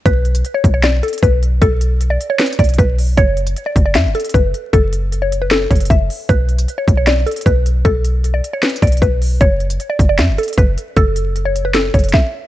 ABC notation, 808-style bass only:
X:1
M:4/4
L:1/16
Q:1/4=154
K:F#phr
V:1 name="808-style bass" clef=bass
B,,,4 z2 B,,,4 z2 B,,,4 | B,,,6 z4 B,,,2 B,,,4 | F,,,4 z2 F,,,2 F,, F,,, z2 F,,,2 z2 | F,,,8- F,,,2 F,,,2 F,,,2 z2 |
B,,,4 z2 B,,,4 z2 B,,,4 | B,,,6 z4 B,,,2 B,,,4 | F,,,4 z2 F,,,2 F,, F,,, z2 F,,,2 z2 | F,,,8- F,,,2 F,,,2 z4 |]